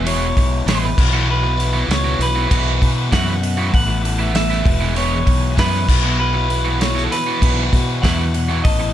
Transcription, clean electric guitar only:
0.07 0.69 C#5 loud
0.69 1.25 B4 medium
1.30 1.91 B4 medium
1.92 2.19 C#5 medium
2.22 3.09 B4 medium
3.13 3.73 F#5 loud
3.74 4.35 F#5 loud
4.36 4.96 E5 medium
4.97 5.54 C#5 loud
5.59 6.18 B4 medium
6.19 6.80 B4 medium
6.81 7.03 C#5 medium
7.04 7.11 A4 medium
7.11 8.02 B4 medium
8.02 8.63 F#5 loud
8.64 8.93 D#5 medium

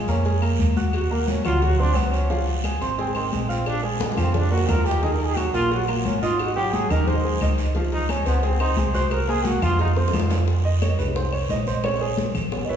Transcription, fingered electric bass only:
0.07 0.55 F2 medium
0.60 1.39 D#2 medium
1.44 1.92 D2 medium
1.95 2.75 C#2 loud
2.80 3.28 G#1 loud
3.32 4.12 A#1 loud
4.17 4.65 F2 medium
4.68 5.48 D#2 loud
5.53 6.01 A#1 loud
6.05 6.84 G#1 medium
6.90 7.37 D#2 medium
7.41 8.21 C#2 medium
8.26 8.74 C#2 loud
8.77 9.57 C2 medium
9.62 10.10 F2 loud
10.13 10.93 F2 medium
10.99 11.46 C2 medium
11.49 12.29 A#1 medium
12.34 12.66 A1 loud
12.68 12.77 A1 medium

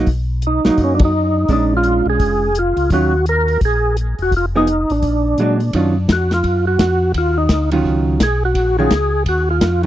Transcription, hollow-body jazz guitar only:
0.65 1.11 F#3 medium
0.65 1.12 A#3 medium
0.65 1.12 D#4 medium
1.49 2.48 G#3 soft
1.49 2.48 C#4 medium
1.49 2.48 D4 medium
2.92 3.12 D#3 medium
2.92 3.12 F#3 medium
2.92 3.12 C#4 medium
2.92 3.12 F4 medium
4.56 4.67 F3 medium
4.56 4.67 B3 medium
4.56 4.67 D#4 medium
4.56 4.67 G#4 medium
5.40 5.59 F#3 medium
5.40 5.59 G#3 medium
5.40 5.60 D4 medium
5.74 5.94 D#3 medium
5.74 5.94 F#3 medium
5.74 5.95 C#4 medium
5.74 5.95 F4 medium
7.72 8.18 D#3 medium
7.72 8.18 F#3 medium
7.72 8.19 C#4 medium
7.72 8.19 F4 medium
8.79 8.90 D#3 medium
8.79 8.91 F#3 medium
8.79 8.91 C#4 medium
8.79 8.91 F4 medium

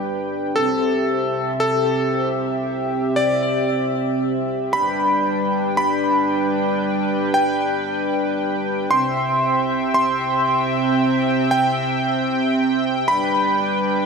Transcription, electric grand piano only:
0.56 1.49 A4 medium
1.60 2.28 A4 medium
3.16 3.84 D5 loud
4.73 5.67 B5 loud
5.77 6.45 B5 loud
7.34 8.02 G5 medium
8.91 9.84 C6 loud
9.94 10.62 C6 loud
11.51 12.19 G5 loud
13.08 14.02 B5 loud

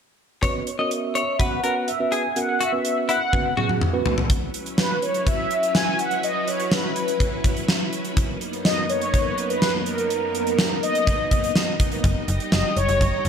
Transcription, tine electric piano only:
0.43 0.68 B3 medium
0.43 0.68 C#4 medium
0.43 0.68 F#4 medium
0.43 0.68 B4 medium
0.79 1.21 B3 medium
0.79 1.21 C#4 medium
0.79 1.21 F#4 medium
0.79 1.21 A#4 medium
1.40 1.56 B3 medium
1.40 1.56 C#4 medium
1.40 1.56 F#4 medium
1.40 1.56 B4 medium
1.64 1.89 B3 medium
1.64 1.89 C#4 medium
1.64 1.89 F#4 medium
1.64 1.89 B4 medium
2.00 2.25 B3 medium
2.00 2.25 C#4 medium
2.00 2.25 F#4 medium
2.00 2.25 B4 medium
2.36 2.61 B3 medium
2.36 2.61 C#4 medium
2.36 2.61 F#4 medium
2.36 2.62 A#4 medium
2.73 3.15 B3 medium
2.73 3.15 C#4 medium
2.73 3.15 F#4 medium
2.73 3.15 B4 medium
3.33 3.50 B3 medium
3.33 3.50 C#4 medium
3.33 3.50 F#4 medium
3.33 3.50 B4 medium
3.57 3.82 B3 medium
3.57 3.82 C#4 medium
3.57 3.82 F#4 medium
3.57 3.82 G#4 medium
3.94 4.19 B3 medium
3.94 4.19 C#4 medium
3.94 4.19 F#4 medium
3.94 4.19 B4 loud

